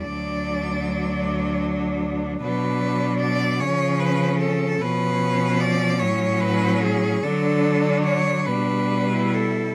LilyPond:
<<
  \new Staff \with { instrumentName = "Cello" } { \time 6/8 \key d \lydian \tempo 4. = 50 d''2 r4 | \key cis \phrygian b'4 d''8 cis''8 b'8 a'8 | b'4 d''8 cis''8 b'8 gis'8 | a'4 cis''8 b'4 a'8 | }
  \new Staff \with { instrumentName = "Cello" } { \time 6/8 \key d \lydian d'2. | \key cis \phrygian d'4. cis'4. | cis'4. cis'4. | d'4. d'8. e'8. | }
  \new Staff \with { instrumentName = "Cello" } { \clef bass \time 6/8 \key d \lydian fis2. | \key cis \phrygian fis4. eis4. | eis4. fis4. | fis4. g4. | }
  \new Staff \with { instrumentName = "Cello" } { \clef bass \time 6/8 \key d \lydian d,2. | \key cis \phrygian b,4. cis4. | b,4. a,4. | d4. b,4. | }
>>